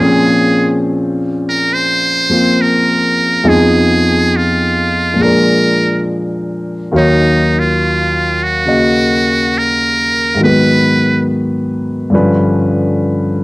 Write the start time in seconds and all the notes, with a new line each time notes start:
Already playing: A#2 F3 C4 G#4
0.00 C#4 G#4
1.49 A#4
1.73 C5
2.30 F3 A#3 C4 F4
2.61 A#4
3.44 F2 F3 B3 D#4 G#4
3.49 G#4
4.36 F4
5.14 A#2 F3
5.19 G#3 D4 A#4
5.24 A#4
6.91 D#2 D#3 F#3 F5
6.96 D#4 C#5
7.59 F4
8.44 F#4
8.66 C#3 A#3 F#4 D#5
9.58 A#4
10.34 G#2 D#3
10.40 F#3 B3 B4
10.45 B4
12.10 G2 D3 F3 C#4
12.15 B4